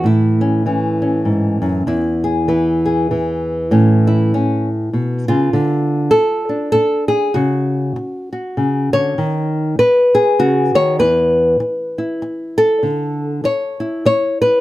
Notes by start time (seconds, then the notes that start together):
Already playing: E3
0.04 A2 E4
0.41 C#4
0.66 E3 C#4
1.02 C#4
1.25 G#2
1.62 F#2
1.87 E2 E4
2.24 G#4
2.48 E3 B4
2.85 G#4
3.11 E3
3.71 A2 C#4
4.07 E4
4.34 C#4
4.93 B2
5.28 C#3 F4
5.53 D3
6.11 A4, muted nylon-string guitar stroke
6.49 D4
6.72 A4, muted nylon-string guitar stroke
7.08 G#4
7.34 C#3 F#4
7.96 muted nylon-string guitar stroke
8.33 F#4
8.57 C#3
8.93 D3 C#5
9.18 D#3
9.79 B4, muted nylon-string guitar stroke
10.15 G#4
10.39 C#3 F#4
10.75 D#3 C#5
10.99 E2 B4
11.60 muted nylon-string guitar stroke
11.98 E4
12.22 muted nylon-string guitar stroke
12.58 A4
12.83 D3
13.44 C#5, muted nylon-string guitar stroke
13.80 E4
14.05 C#5, muted nylon-string guitar stroke
14.42 B4